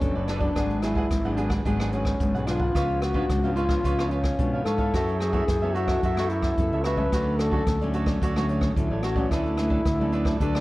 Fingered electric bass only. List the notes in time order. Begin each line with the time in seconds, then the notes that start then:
0.01 F#1
0.16 F#1
0.56 G#1
1.11 G#1
1.65 G#1
2.20 G#1
2.34 B1
2.75 C#2
3.30 C#2
3.84 C#2
4.39 B2
4.66 G#2
4.94 F#2
5.48 F#2
6.03 F#2
6.58 F#2
6.72 C#2
7.12 D2
7.67 D2
8.22 D2
8.76 D2
8.90 A1
9.31 D2
9.86 D2
10.40 D2